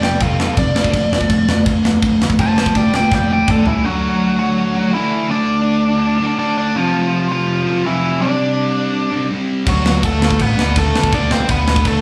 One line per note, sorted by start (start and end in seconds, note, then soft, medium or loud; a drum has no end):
0.00 0.11 F1 medium
0.00 0.18 F2 medium
0.00 0.19 C3 medium
0.00 0.20 D5 medium
0.00 0.21 G5 medium
0.00 snare loud
0.20 0.47 F1 medium
0.20 0.37 F2 medium
0.20 0.37 C3 medium
0.20 0.38 A4 medium
0.20 0.39 F5 loud
0.20 kick loud
0.20 crash medium
0.39 0.55 F2 medium
0.39 0.55 C3 medium
0.39 0.57 A4 medium
0.39 0.58 F5 medium
0.39 snare loud
0.57 0.70 F1 medium
0.57 0.73 F2 medium
0.57 0.74 C3 medium
0.57 1.64 D5 loud
0.57 kick loud
0.57 crash medium
0.75 0.89 F1 loud
0.75 0.92 D3 loud
0.75 0.92 A3 medium
0.75 0.93 D4 loud
0.75 snare loud
0.84 kick loud
0.93 1.07 F1 loud
0.93 1.10 D3 medium
0.93 1.10 A3 loud
0.93 kick loud
0.93 crash medium
1.12 1.25 F1 medium
1.12 1.28 D3 medium
1.12 1.28 A3 medium
1.12 snare loud
1.21 kick medium
1.30 1.43 F1 medium
1.30 1.46 D3 medium
1.30 1.47 A3 medium
1.30 kick loud
1.30 crash medium
1.48 1.61 F1 medium
1.48 1.64 D3 medium
1.48 1.64 A3 medium
1.48 snare loud
1.66 1.79 F1 medium
1.66 1.82 D3 medium
1.66 1.82 A3 medium
1.66 kick loud
1.66 crash medium
1.83 1.98 F1 medium
1.83 2.00 D3 medium
1.83 2.00 A3 medium
1.83 snare loud
2.02 2.16 F1 medium
2.02 2.19 D3 medium
2.02 2.19 A3 medium
2.02 kick loud
2.02 crash medium
2.21 2.34 F1 loud
2.21 2.37 D3 medium
2.21 2.37 A3 medium
2.21 snare loud
2.30 kick medium
2.39 2.65 F1 loud
2.39 2.55 D3 medium
2.39 2.56 A3 loud
2.39 2.57 C5 medium
2.39 2.57 A5 loud
2.39 kick loud
2.39 crash medium
2.58 2.74 D3 medium
2.58 2.74 A3 medium
2.58 2.74 C5 medium
2.58 2.77 A5 medium
2.58 snare loud
2.66 kick medium
2.75 3.01 F1 loud
2.75 2.92 D3 medium
2.75 2.92 A3 medium
2.75 2.94 D5 medium
2.75 2.94 G5 medium
2.75 kick loud
2.75 crash medium
2.93 3.10 D3 medium
2.93 3.10 A3 medium
2.93 3.11 D5 medium
2.93 3.12 G5 loud
2.93 snare loud
3.12 3.38 F1 loud
3.12 3.28 D3 medium
3.12 3.28 A3 medium
3.12 3.30 D5 medium
3.12 3.31 G5 medium
3.12 kick loud
3.12 snare medium
3.30 3.46 D3 medium
3.30 3.46 A3 medium
3.30 3.48 D5 medium
3.30 3.49 G5 loud
3.47 3.61 F1 medium
3.47 3.64 D3 medium
3.47 3.64 A3 medium
3.47 3.67 D4 medium
3.47 3.67 A4 medium
3.47 3.66 D5 medium
3.47 kick loud
3.47 mid tom loud
3.65 3.79 C2 loud
3.65 3.82 D3 medium
3.65 3.84 E3 medium
3.65 3.82 A3 medium
3.65 3.85 E4 medium
3.65 floor tom loud
3.84 4.74 D3 loud
3.84 4.36 F#3 medium
3.84 4.76 A3 loud
3.84 4.73 D4 loud
3.84 4.38 F#4 loud
4.39 4.90 F#3 medium
4.39 4.94 F#4 loud
4.75 4.92 D3 medium
4.75 4.94 A3 medium
4.75 4.92 D4 medium
4.93 5.28 D3 medium
4.93 5.28 E3 medium
4.93 5.30 A3 medium
4.93 5.30 D4 medium
4.93 5.30 E4 medium
5.29 6.19 D3 loud
5.29 6.20 A3 loud
5.29 6.38 D4 loud
5.29 6.18 D4 loud
5.29 6.36 D5 medium
6.20 6.37 D3 medium
6.20 6.38 A3 medium
6.20 6.37 D4 loud
6.38 6.74 D3 medium
6.38 6.74 A3 medium
6.38 6.57 D4 medium
6.38 6.75 D4 medium
6.38 6.56 D5 medium
6.58 6.76 D4 loud
6.58 6.75 D5 medium
6.74 7.65 F2 loud
6.74 7.65 C3 loud
6.74 7.27 F3 medium
6.74 7.64 F3 loud
6.74 7.31 F4 loud
7.32 7.82 F3 medium
7.32 7.86 F4 medium
7.66 7.83 F2 medium
7.66 7.84 C3 medium
7.66 7.83 F3 loud
7.84 8.20 F2 medium
7.84 8.19 C3 medium
7.84 8.19 E3 medium
7.84 8.21 F3 medium
7.84 8.21 E4 medium
8.20 9.11 C3 medium
8.20 9.11 G3 loud
8.20 9.10 C4 loud
8.20 9.27 D4 medium
8.20 9.27 D5 medium
9.12 9.29 C3 medium
9.12 9.30 G3 medium
9.12 9.29 C4 medium
9.30 9.65 C3 medium
9.30 9.66 G3 medium
9.30 9.67 C4 medium
9.66 9.92 D2 loud
9.66 10.56 D3 loud
9.66 10.01 F#3 medium
9.66 10.59 A3 loud
9.66 10.56 D4 loud
9.66 10.02 F#4 loud
9.66 kick loud
9.66 crash medium
9.86 snare loud
10.03 10.16 D2 loud
10.03 10.21 A3 medium
10.03 10.22 A4 medium
10.03 kick loud
10.03 crash medium
10.20 10.33 D2 medium
10.20 10.39 A3 medium
10.20 10.41 A4 medium
10.20 snare loud
10.31 kick medium
10.39 10.52 A1 medium
10.39 10.75 B3 medium
10.39 10.78 B4 loud
10.39 kick loud
10.39 crash medium
10.57 10.70 D2 medium
10.57 10.75 D3 medium
10.57 10.77 A3 medium
10.57 10.75 D4 medium
10.57 snare loud
10.76 10.89 D2 loud
10.76 11.11 D3 medium
10.76 11.13 A3 medium
10.76 11.11 A3 medium
10.76 11.13 D4 medium
10.76 11.15 A4 loud
10.76 kick loud
10.76 crash medium
10.94 11.07 D2 medium
10.94 snare loud
11.03 kick medium
11.12 11.25 D2 loud
11.12 12.01 D3 loud
11.12 12.01 A3 loud
11.12 11.31 D4 loud
11.12 12.01 D4 loud
11.12 11.31 D5 loud
11.12 kick loud
11.12 crash medium
11.31 11.44 C2 medium
11.31 11.49 C4 medium
11.31 11.51 C5 medium
11.31 snare loud
11.48 11.62 D2 loud
11.48 11.84 B3 medium
11.48 11.87 B4 loud
11.48 kick loud
11.48 crash medium
11.67 11.80 D2 medium
11.67 snare loud
11.76 kick medium
11.85 11.98 D2 loud
11.85 12.01 A3 medium
11.85 12.01 A4 loud
11.85 kick loud
11.85 crash medium